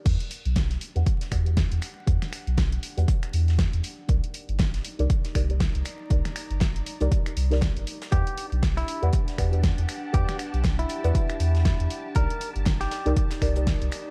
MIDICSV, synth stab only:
0, 0, Header, 1, 2, 480
1, 0, Start_track
1, 0, Tempo, 504202
1, 53, Time_signature, 4, 2, 24, 8
1, 13428, End_track
2, 0, Start_track
2, 0, Title_t, "Synth stab"
2, 0, Program_c, 0, 62
2, 45, Note_on_c, 0, 67, 71
2, 52, Note_on_c, 0, 71, 67
2, 58, Note_on_c, 0, 74, 67
2, 65, Note_on_c, 0, 78, 79
2, 876, Note_off_c, 0, 67, 0
2, 879, Note_off_c, 0, 71, 0
2, 882, Note_off_c, 0, 74, 0
2, 885, Note_off_c, 0, 78, 0
2, 909, Note_on_c, 0, 67, 100
2, 912, Note_on_c, 0, 71, 89
2, 915, Note_on_c, 0, 74, 89
2, 919, Note_on_c, 0, 78, 109
2, 1061, Note_off_c, 0, 67, 0
2, 1062, Note_off_c, 0, 71, 0
2, 1064, Note_off_c, 0, 74, 0
2, 1066, Note_off_c, 0, 78, 0
2, 1249, Note_on_c, 0, 67, 96
2, 1252, Note_on_c, 0, 71, 87
2, 1256, Note_on_c, 0, 74, 90
2, 1259, Note_on_c, 0, 78, 108
2, 1370, Note_off_c, 0, 67, 0
2, 1372, Note_off_c, 0, 71, 0
2, 1373, Note_off_c, 0, 74, 0
2, 1375, Note_off_c, 0, 78, 0
2, 1383, Note_on_c, 0, 67, 75
2, 1390, Note_on_c, 0, 71, 66
2, 1396, Note_on_c, 0, 74, 65
2, 1403, Note_on_c, 0, 78, 81
2, 1944, Note_off_c, 0, 67, 0
2, 1948, Note_off_c, 0, 71, 0
2, 1951, Note_off_c, 0, 74, 0
2, 1954, Note_off_c, 0, 78, 0
2, 1964, Note_on_c, 0, 67, 88
2, 1971, Note_on_c, 0, 71, 84
2, 1977, Note_on_c, 0, 74, 82
2, 1984, Note_on_c, 0, 78, 103
2, 2795, Note_off_c, 0, 67, 0
2, 2798, Note_off_c, 0, 71, 0
2, 2802, Note_off_c, 0, 74, 0
2, 2805, Note_off_c, 0, 78, 0
2, 2828, Note_on_c, 0, 67, 100
2, 2832, Note_on_c, 0, 71, 92
2, 2836, Note_on_c, 0, 74, 90
2, 2839, Note_on_c, 0, 78, 106
2, 3087, Note_off_c, 0, 67, 0
2, 3089, Note_off_c, 0, 71, 0
2, 3091, Note_off_c, 0, 74, 0
2, 3092, Note_off_c, 0, 78, 0
2, 3884, Note_on_c, 0, 63, 72
2, 3890, Note_on_c, 0, 67, 67
2, 3897, Note_on_c, 0, 70, 67
2, 3903, Note_on_c, 0, 74, 78
2, 4715, Note_off_c, 0, 63, 0
2, 4718, Note_off_c, 0, 67, 0
2, 4721, Note_off_c, 0, 70, 0
2, 4724, Note_off_c, 0, 74, 0
2, 4749, Note_on_c, 0, 63, 103
2, 4752, Note_on_c, 0, 67, 90
2, 4755, Note_on_c, 0, 70, 91
2, 4758, Note_on_c, 0, 74, 109
2, 4901, Note_off_c, 0, 63, 0
2, 4902, Note_off_c, 0, 67, 0
2, 4904, Note_off_c, 0, 70, 0
2, 4905, Note_off_c, 0, 74, 0
2, 5090, Note_on_c, 0, 63, 100
2, 5093, Note_on_c, 0, 67, 93
2, 5097, Note_on_c, 0, 70, 89
2, 5100, Note_on_c, 0, 74, 107
2, 5211, Note_off_c, 0, 63, 0
2, 5212, Note_off_c, 0, 67, 0
2, 5214, Note_off_c, 0, 70, 0
2, 5215, Note_off_c, 0, 74, 0
2, 5225, Note_on_c, 0, 63, 71
2, 5232, Note_on_c, 0, 67, 68
2, 5239, Note_on_c, 0, 70, 66
2, 5245, Note_on_c, 0, 74, 81
2, 5786, Note_off_c, 0, 63, 0
2, 5789, Note_off_c, 0, 67, 0
2, 5792, Note_off_c, 0, 70, 0
2, 5796, Note_off_c, 0, 74, 0
2, 5805, Note_on_c, 0, 63, 93
2, 5812, Note_on_c, 0, 67, 83
2, 5818, Note_on_c, 0, 70, 83
2, 5825, Note_on_c, 0, 74, 99
2, 6635, Note_off_c, 0, 63, 0
2, 6639, Note_off_c, 0, 67, 0
2, 6642, Note_off_c, 0, 70, 0
2, 6646, Note_off_c, 0, 74, 0
2, 6669, Note_on_c, 0, 63, 98
2, 6672, Note_on_c, 0, 67, 91
2, 6676, Note_on_c, 0, 70, 91
2, 6679, Note_on_c, 0, 74, 110
2, 6928, Note_off_c, 0, 63, 0
2, 6929, Note_off_c, 0, 67, 0
2, 6931, Note_off_c, 0, 70, 0
2, 6933, Note_off_c, 0, 74, 0
2, 7144, Note_on_c, 0, 63, 91
2, 7150, Note_on_c, 0, 67, 88
2, 7157, Note_on_c, 0, 70, 85
2, 7164, Note_on_c, 0, 74, 102
2, 7705, Note_off_c, 0, 63, 0
2, 7708, Note_off_c, 0, 67, 0
2, 7711, Note_off_c, 0, 70, 0
2, 7715, Note_off_c, 0, 74, 0
2, 7724, Note_on_c, 0, 67, 74
2, 7730, Note_on_c, 0, 71, 67
2, 7737, Note_on_c, 0, 74, 65
2, 7744, Note_on_c, 0, 78, 79
2, 8555, Note_off_c, 0, 67, 0
2, 8558, Note_off_c, 0, 71, 0
2, 8561, Note_off_c, 0, 74, 0
2, 8565, Note_off_c, 0, 78, 0
2, 8588, Note_on_c, 0, 67, 99
2, 8591, Note_on_c, 0, 71, 93
2, 8595, Note_on_c, 0, 74, 89
2, 8598, Note_on_c, 0, 78, 108
2, 8740, Note_off_c, 0, 67, 0
2, 8742, Note_off_c, 0, 71, 0
2, 8744, Note_off_c, 0, 74, 0
2, 8745, Note_off_c, 0, 78, 0
2, 8928, Note_on_c, 0, 67, 98
2, 8931, Note_on_c, 0, 71, 90
2, 8935, Note_on_c, 0, 74, 92
2, 8937, Note_on_c, 0, 78, 106
2, 9050, Note_off_c, 0, 67, 0
2, 9051, Note_off_c, 0, 71, 0
2, 9053, Note_off_c, 0, 74, 0
2, 9054, Note_off_c, 0, 78, 0
2, 9062, Note_on_c, 0, 67, 74
2, 9069, Note_on_c, 0, 71, 69
2, 9076, Note_on_c, 0, 74, 68
2, 9082, Note_on_c, 0, 78, 82
2, 9624, Note_off_c, 0, 67, 0
2, 9627, Note_off_c, 0, 71, 0
2, 9631, Note_off_c, 0, 74, 0
2, 9634, Note_off_c, 0, 78, 0
2, 9644, Note_on_c, 0, 67, 91
2, 9650, Note_on_c, 0, 71, 84
2, 9657, Note_on_c, 0, 74, 85
2, 9663, Note_on_c, 0, 78, 102
2, 10475, Note_off_c, 0, 67, 0
2, 10478, Note_off_c, 0, 71, 0
2, 10481, Note_off_c, 0, 74, 0
2, 10484, Note_off_c, 0, 78, 0
2, 10509, Note_on_c, 0, 67, 100
2, 10511, Note_on_c, 0, 71, 89
2, 10515, Note_on_c, 0, 74, 91
2, 10518, Note_on_c, 0, 78, 115
2, 10767, Note_off_c, 0, 67, 0
2, 10769, Note_off_c, 0, 71, 0
2, 10770, Note_off_c, 0, 74, 0
2, 10772, Note_off_c, 0, 78, 0
2, 11565, Note_on_c, 0, 63, 70
2, 11572, Note_on_c, 0, 67, 68
2, 11579, Note_on_c, 0, 70, 67
2, 11585, Note_on_c, 0, 74, 81
2, 12396, Note_off_c, 0, 63, 0
2, 12399, Note_off_c, 0, 67, 0
2, 12402, Note_off_c, 0, 70, 0
2, 12405, Note_off_c, 0, 74, 0
2, 12429, Note_on_c, 0, 63, 102
2, 12432, Note_on_c, 0, 67, 96
2, 12436, Note_on_c, 0, 70, 93
2, 12439, Note_on_c, 0, 74, 108
2, 12581, Note_off_c, 0, 63, 0
2, 12582, Note_off_c, 0, 67, 0
2, 12584, Note_off_c, 0, 70, 0
2, 12586, Note_off_c, 0, 74, 0
2, 12769, Note_on_c, 0, 63, 100
2, 12773, Note_on_c, 0, 67, 89
2, 12777, Note_on_c, 0, 70, 93
2, 12780, Note_on_c, 0, 74, 114
2, 12890, Note_off_c, 0, 63, 0
2, 12892, Note_off_c, 0, 67, 0
2, 12894, Note_off_c, 0, 70, 0
2, 12895, Note_off_c, 0, 74, 0
2, 12904, Note_on_c, 0, 63, 75
2, 12911, Note_on_c, 0, 67, 68
2, 12918, Note_on_c, 0, 70, 66
2, 12924, Note_on_c, 0, 74, 82
2, 13428, Note_off_c, 0, 63, 0
2, 13428, Note_off_c, 0, 67, 0
2, 13428, Note_off_c, 0, 70, 0
2, 13428, Note_off_c, 0, 74, 0
2, 13428, End_track
0, 0, End_of_file